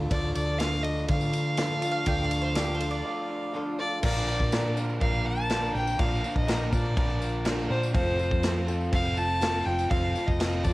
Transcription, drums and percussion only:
0.11 kick loud
0.11 ride loud
0.11 tambourine soft
0.35 ride medium
0.35 tambourine medium
0.48 tambourine soft
0.60 snare loud
0.60 ride medium
0.60 tambourine medium
0.84 ride medium
0.96 tambourine soft
1.08 kick loud
1.08 ride medium
1.08 tambourine soft
1.21 tambourine medium
1.33 ride medium
1.33 tambourine medium
1.46 tambourine soft
1.57 snare loud
1.57 ride medium
1.57 tambourine loud
1.82 ride medium
1.82 tambourine medium
2.06 kick loud
2.06 ride medium
2.06 tambourine soft
2.20 tambourine soft
2.31 ride medium
2.31 tambourine medium
2.45 tambourine soft
2.55 snare loud
2.55 ride loud
2.55 tambourine loud
2.80 ride medium
2.80 tambourine soft
2.94 tambourine soft
4.03 kick loud
4.03 crash loud
4.03 tambourine soft
4.03 crash medium
4.16 tambourine soft
4.28 tambourine medium
4.40 kick medium
4.52 snare loud
4.52 tambourine medium
4.52 crash medium
4.77 tambourine medium
4.89 tambourine soft
5.01 kick loud
5.01 crash medium
5.14 tambourine soft
5.50 snare loud
5.50 tambourine loud
5.50 crash medium
5.63 tambourine soft
5.75 tambourine soft
5.87 tambourine medium
5.99 kick loud
5.99 tambourine soft
5.99 crash medium
6.12 tambourine soft
6.24 tambourine medium
6.36 kick medium
6.48 snare loud
6.48 tambourine medium
6.48 crash medium
6.73 kick medium
6.73 tambourine medium
6.85 tambourine soft
6.97 kick loud
6.97 crash medium
7.09 tambourine soft
7.22 tambourine medium
7.45 snare loud
7.45 tambourine medium
7.45 crash medium
7.59 tambourine soft
7.71 tambourine soft
7.83 tambourine medium
7.94 kick loud
7.94 tambourine soft
7.94 crash medium
8.08 tambourine soft
8.19 tambourine medium
8.31 kick medium
8.43 snare loud
8.43 tambourine medium
8.43 crash medium
8.68 tambourine medium
8.80 tambourine soft
8.93 kick loud
8.93 crash medium
9.05 tambourine soft
9.17 tambourine medium
9.41 snare loud
9.41 tambourine medium
9.41 crash medium
9.54 tambourine soft
9.67 tambourine soft
9.79 tambourine medium
9.91 kick loud
9.91 tambourine soft
9.91 crash medium
10.03 tambourine soft
10.15 tambourine medium
10.28 kick medium
10.28 tambourine soft
10.40 snare loud
10.40 tambourine medium
10.40 crash medium
10.53 tambourine soft
10.64 kick medium
10.64 tambourine medium

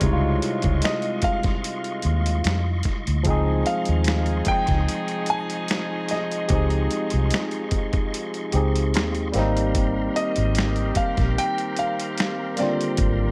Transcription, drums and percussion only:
0.01 kick loud
0.01 closed hi-hat medium
0.42 closed hi-hat medium
0.62 kick medium
0.62 closed hi-hat soft
0.82 finger snap loud
0.82 snare loud
0.82 closed hi-hat medium
1.02 closed hi-hat soft
1.22 kick medium
1.22 closed hi-hat medium
1.43 kick loud
1.43 snare soft
1.43 closed hi-hat soft
1.64 closed hi-hat medium
1.84 closed hi-hat soft
2.02 closed hi-hat medium
2.26 closed hi-hat medium
2.44 finger snap loud
2.44 snare loud
2.44 closed hi-hat medium
2.83 kick medium
2.83 snare soft
2.83 closed hi-hat medium
3.07 closed hi-hat soft
3.25 kick loud
3.25 closed hi-hat medium
3.66 closed hi-hat medium
3.85 closed hi-hat medium
4.04 finger snap medium
4.04 snare loud
4.04 closed hi-hat medium
4.26 closed hi-hat soft
4.45 kick medium
4.45 closed hi-hat medium
4.67 kick medium
4.67 snare soft
4.67 closed hi-hat soft
4.88 closed hi-hat medium
5.08 closed hi-hat soft
5.26 closed hi-hat medium
5.50 closed hi-hat medium
5.68 finger snap loud
5.68 snare loud
5.68 closed hi-hat medium
6.08 snare soft
6.08 closed hi-hat medium
6.32 closed hi-hat soft
6.49 kick loud
6.49 closed hi-hat medium
6.70 closed hi-hat soft
6.91 closed hi-hat medium
7.10 closed hi-hat soft
7.31 finger snap loud
7.31 snare loud
7.31 closed hi-hat medium
7.51 closed hi-hat soft
7.71 kick medium
7.71 closed hi-hat medium
7.93 kick loud
7.93 closed hi-hat soft
8.14 closed hi-hat medium
8.34 closed hi-hat soft
8.52 closed hi-hat medium
8.76 closed hi-hat medium
8.94 finger snap medium
8.94 snare loud
8.94 closed hi-hat medium
9.15 closed hi-hat soft
9.34 snare soft
9.34 closed hi-hat medium
9.57 closed hi-hat soft
9.75 kick loud
9.75 closed hi-hat medium
10.16 closed hi-hat medium
10.36 closed hi-hat soft
10.55 finger snap medium
10.55 snare loud
10.55 closed hi-hat medium
10.76 closed hi-hat soft
10.95 kick medium
10.95 closed hi-hat medium
11.17 kick medium
11.17 snare soft
11.17 closed hi-hat soft
11.38 closed hi-hat medium
11.58 closed hi-hat soft
11.77 closed hi-hat medium
12.00 closed hi-hat medium
12.18 finger snap medium
12.18 snare loud
12.18 closed hi-hat medium
12.57 snare soft
12.57 closed hi-hat medium
12.81 closed hi-hat soft
12.97 kick loud
12.97 closed hi-hat medium

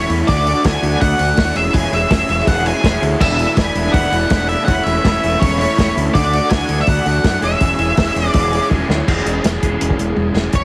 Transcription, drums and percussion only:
0.10 open hi-hat medium
0.28 kick loud
0.28 open hi-hat medium
0.47 open hi-hat medium
0.64 kick loud
0.64 snare loud
0.64 open hi-hat medium
0.83 open hi-hat medium
0.94 snare soft
1.01 kick loud
1.01 open hi-hat medium
1.19 open hi-hat medium
1.37 kick loud
1.37 snare loud
1.37 open hi-hat medium
1.56 open hi-hat medium
1.74 kick loud
1.74 open hi-hat medium
1.93 open hi-hat medium
2.11 kick loud
2.11 snare loud
2.11 open hi-hat medium
2.29 open hi-hat medium
2.40 snare soft
2.47 kick loud
2.47 open hi-hat medium
2.66 open hi-hat medium
2.84 kick loud
2.84 snare loud
2.84 open hi-hat medium
3.03 open hi-hat medium
3.21 kick loud
3.21 crash loud
3.39 open hi-hat medium
3.57 kick loud
3.57 snare loud
3.57 open hi-hat medium
3.75 open hi-hat medium
3.86 snare soft
3.94 kick loud
3.94 open hi-hat medium
4.13 open hi-hat medium
4.30 kick loud
4.30 snare loud
4.30 open hi-hat medium
4.49 open hi-hat medium
4.68 kick loud
4.68 open hi-hat medium
4.86 open hi-hat medium
5.05 kick loud
5.05 snare loud
5.05 open hi-hat medium
5.24 open hi-hat medium
5.42 kick loud
5.42 open hi-hat medium
5.61 open hi-hat medium
5.78 kick loud
5.78 snare loud
5.78 open hi-hat medium
5.98 open hi-hat medium
6.15 kick loud
6.15 open hi-hat medium
6.33 open hi-hat medium
6.50 kick loud
6.50 snare loud
6.50 open hi-hat medium
6.69 open hi-hat medium
6.79 snare soft
6.87 kick loud
6.87 open hi-hat medium
7.06 open hi-hat medium
7.24 kick loud
7.24 snare loud
7.24 open hi-hat medium
7.42 open hi-hat medium
7.60 kick loud
7.60 open hi-hat medium
7.79 open hi-hat medium
7.97 kick loud
7.97 snare loud
7.97 open hi-hat medium
8.16 open hi-hat medium
8.26 snare soft
8.34 kick loud
8.34 open hi-hat medium
8.53 open hi-hat medium
8.71 kick loud
8.90 snare medium
9.08 kick loud
9.08 crash loud
9.18 snare soft
9.26 closed hi-hat medium
9.44 snare loud
9.44 closed hi-hat medium
9.63 kick medium
9.63 closed hi-hat medium
9.81 closed hi-hat medium
9.90 kick medium
9.99 closed hi-hat medium
10.16 high tom medium
10.36 snare medium
10.53 kick loud
10.53 closed hi-hat medium

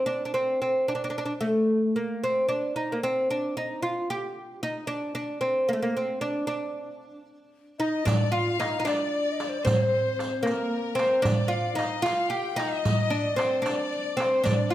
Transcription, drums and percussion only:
8.07 riq medium
8.07 darbuka dum loud
8.60 riq soft
8.60 darbuka tek medium
8.87 riq medium
8.87 darbuka tek medium
9.40 riq soft
9.40 darbuka tek medium
9.67 riq medium
9.67 darbuka dum loud
10.19 riq soft
10.19 darbuka tek medium
10.46 riq soft
10.46 darbuka tek medium
10.99 riq soft
10.99 darbuka tek medium
11.25 riq medium
11.25 darbuka dum medium
11.79 riq soft
11.79 darbuka tek medium
12.06 riq medium
12.06 darbuka tek medium
12.59 riq soft
12.59 darbuka tek medium
12.85 riq medium
12.85 darbuka dum medium
13.12 riq soft
13.38 riq soft
13.38 darbuka tek medium
13.66 riq medium
13.66 darbuka tek medium
13.92 riq soft
13.92 darbuka ka soft
14.18 riq soft
14.18 darbuka tek medium
14.45 riq medium
14.45 darbuka dum medium

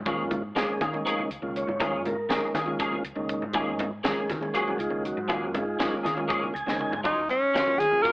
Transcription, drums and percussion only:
0.06 kick loud
0.06 closed hi-hat medium
0.06 muted conga medium
0.31 kick medium
0.31 closed hi-hat medium
0.31 low conga medium
0.43 low conga soft
0.56 snare medium
0.56 closed hi-hat medium
0.56 high conga loud
0.81 kick medium
0.81 closed hi-hat medium
0.81 low conga medium
0.94 muted conga medium
1.07 closed hi-hat medium
1.19 high conga medium
1.19 low conga medium
1.31 closed hi-hat medium
1.56 closed hi-hat medium
1.68 high conga medium
1.68 low conga medium
1.80 kick loud
1.80 closed hi-hat medium
1.80 muted conga loud
2.05 closed hi-hat medium
2.05 low conga medium
2.18 low conga soft
2.30 snare loud
2.30 closed hi-hat medium
2.30 high conga loud
2.55 snare soft
2.55 closed hi-hat medium
2.55 low conga medium
2.68 muted conga medium
2.80 kick loud
2.80 closed hi-hat medium
2.92 low conga medium
3.05 closed hi-hat medium
3.29 kick medium
3.29 closed hi-hat medium
3.42 high conga medium
3.42 low conga medium
3.53 kick loud
3.53 closed hi-hat medium
3.53 muted conga medium
3.79 kick medium
3.79 closed hi-hat medium
3.79 low conga medium
3.92 low conga soft
4.04 snare loud
4.04 closed hi-hat medium
4.04 high conga loud
4.30 kick medium
4.30 snare soft
4.30 closed hi-hat medium
4.30 low conga loud
4.43 muted conga medium
4.55 closed hi-hat medium
4.68 high conga medium
4.68 low conga medium
4.80 closed hi-hat medium
5.05 closed hi-hat medium
5.17 high conga medium
5.30 kick loud
5.30 closed hi-hat medium
5.30 muted conga loud
5.30 low conga soft
5.54 closed hi-hat medium
5.54 low conga loud
5.80 snare loud
5.80 closed hi-hat medium
5.80 high conga loud
6.05 snare soft
6.05 closed hi-hat medium
6.05 low conga medium
6.18 muted conga medium
6.30 kick loud
6.30 closed hi-hat medium
6.43 high conga medium
6.43 low conga medium
6.56 closed hi-hat medium
6.68 snare medium
6.81 mid tom medium
6.81 low conga soft
6.93 floor tom loud
6.93 high conga medium
6.93 low conga medium
7.05 kick medium
7.05 closed hi-hat medium
7.05 muted conga medium
7.17 low conga soft
7.29 closed hi-hat medium
7.29 high conga medium
7.56 snare loud
7.56 closed hi-hat medium
7.67 low conga medium
7.80 closed hi-hat medium
7.80 low conga soft
7.93 muted conga medium
8.05 kick medium
8.05 closed hi-hat medium

